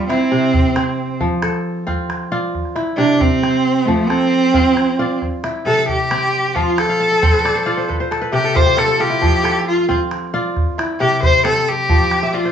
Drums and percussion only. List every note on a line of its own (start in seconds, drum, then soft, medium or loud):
0.10 calabash click medium
0.54 calabash thump medium
0.76 calabash click medium
1.20 calabash thump medium
1.42 calabash click medium
1.54 calabash click soft
1.88 calabash thump medium
1.88 calabash click soft
2.10 calabash click medium
2.55 calabash thump medium
2.65 calabash click soft
2.76 calabash click medium
2.87 calabash click soft
2.99 calabash click soft
3.09 calabash click soft
3.21 calabash thump medium
3.43 calabash click medium
3.65 calabash click soft
3.88 calabash thump medium
4.10 calabash click medium
4.54 calabash thump soft
4.77 calabash click medium
5.22 calabash thump medium
5.22 calabash click soft
5.44 calabash click medium
5.88 calabash thump medium
6.11 calabash click medium
6.56 calabash thump medium
6.78 calabash click medium
7.23 calabash thump medium
7.45 calabash click medium
7.90 calabash thump medium
7.90 calabash click soft
8.12 calabash click medium
8.56 calabash thump medium
8.78 calabash click medium
9.23 calabash thump medium
9.45 calabash click medium
9.90 calabash thump medium
10.11 calabash click medium
10.57 calabash thump medium
10.57 calabash click soft
10.79 calabash click medium
11.23 calabash thump medium
11.45 calabash click medium
11.89 calabash thump medium
12.11 calabash click medium